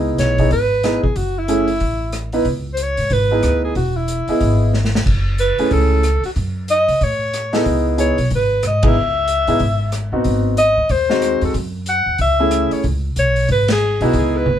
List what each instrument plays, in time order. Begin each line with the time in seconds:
Already playing: upright bass C#2, grand piano B3 D#4 E4 G#4
0.18 upright bass B1, alto saxophone C#5, snare, closed hi-hat
0.38 grand piano B3 D#4 E4 G#4, kick, open hi-hat
0.51 upright bass G#1, alto saxophone B4, kick, open hi-hat
0.83 grand piano B3 D#4 E4 G#4, cross-stick, snare, closed hi-hat
1.03 alto saxophone G#4, muted upright bass stroke, kick
1.16 upright bass F#1, alto saxophone F#4, kick, open hi-hat
1.38 alto saxophone E4
1.48 grand piano A3 C#4 E4 G#4, closed hi-hat
1.68 open hi-hat
1.80 upright bass A1, kick, open hi-hat
2.12 cross-stick, closed hi-hat
2.33 grand piano B3 D#4 E4 B4, open hi-hat
2.45 upright bass C#2, kick, open hi-hat
2.74 alto saxophone C5, closed hi-hat
2.82 alto saxophone C#5
2.97 upright bass G#2, open hi-hat
3.10 upright bass G#1, alto saxophone B4, kick, open hi-hat
3.31 grand piano B3 D#4 E4 G#4
3.43 upright bass D2, cross-stick, closed hi-hat
3.64 alto saxophone G#4
3.75 upright bass E1, alto saxophone F#4, kick, open hi-hat
3.97 alto saxophone E4
4.08 closed hi-hat
4.27 grand piano B3 E4 G#4 D#5, muted upright bass stroke, open hi-hat
4.40 upright bass G#1, kick, open hi-hat
4.74 snare
4.85 snare
4.95 snare
5.06 upright bass F#1, kick, crash
5.38 alto saxophone B4, closed hi-hat
5.58 grand piano A3 C#4 E4 G#4, muted upright bass stroke, open hi-hat
5.71 upright bass C#2, alto saxophone A4, kick, open hi-hat
6.03 cross-stick, closed hi-hat
6.24 alto saxophone F#4, muted upright bass stroke, open hi-hat
6.36 upright bass F#2, kick, open hi-hat
6.68 alto saxophone D#5, closed hi-hat
6.88 upright bass C#3, open hi-hat
7.01 upright bass A2, alto saxophone C#5, kick, open hi-hat
7.33 cross-stick, closed hi-hat
7.53 grand piano B3 D#4 E4 G#4, alto saxophone A4, snare, open hi-hat
7.66 upright bass C#2, kick, open hi-hat
7.97 grand piano B3 D#4 E4 G#4, alto saxophone C#5, closed hi-hat
8.18 upright bass B1, open hi-hat
8.30 upright bass G#1, kick, open hi-hat
8.36 alto saxophone B4
8.63 upright bass G#2, cross-stick, closed hi-hat
8.67 alto saxophone D#5
8.83 grand piano B3 D#4 E4 G#4, kick, ride
8.87 alto saxophone E5
8.95 upright bass C#2
9.28 closed hi-hat
9.47 upright bass G#2, grand piano B3 D#4 E4 G#4, open hi-hat
9.59 upright bass G#1, kick, open hi-hat
9.92 cross-stick, closed hi-hat
10.12 upright bass A1, grand piano B3 C4 D#4 F#4
10.24 upright bass G#1, kick, open hi-hat
10.57 alto saxophone D#5, closed hi-hat
10.77 upright bass D#2
10.89 upright bass D#2, alto saxophone C5, kick, open hi-hat
11.09 grand piano G#3 C4 D#4 F#4, snare
11.22 cross-stick, closed hi-hat
11.41 upright bass E2, alto saxophone A4, open hi-hat
11.54 upright bass F#2, kick, open hi-hat
11.86 alto saxophone F#5, closed hi-hat
12.06 upright bass E2
12.18 upright bass C#2, alto saxophone E5, kick, open hi-hat
12.40 grand piano A3 C#4 E4 G#4
12.51 cross-stick, closed hi-hat
12.71 alto saxophone C#5, muted upright bass stroke, open hi-hat
12.84 upright bass C#2, kick, open hi-hat
13.16 upright bass B1, alto saxophone C#5, closed hi-hat
13.36 open hi-hat
13.48 upright bass G#1, alto saxophone B4, kick, open hi-hat
13.68 snare, ride
13.72 alto saxophone G#4
14.01 upright bass B1, grand piano B3 D#4 E4 G#4, open hi-hat
14.05 alto saxophone F#4
14.13 upright bass C#2, kick, open hi-hat
14.18 alto saxophone G#4
14.37 alto saxophone B4
14.46 upright bass G1, high tom